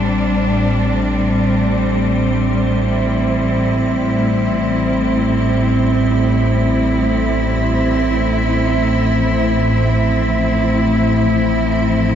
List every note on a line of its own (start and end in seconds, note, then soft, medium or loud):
0.00 12.15 A1 medium
0.00 12.15 A2 medium
0.00 8.64 G3 medium
0.00 12.15 C4 medium
0.00 3.01 D4 medium
0.00 12.15 C5 medium
2.75 12.15 E4 medium
8.91 12.15 F3 medium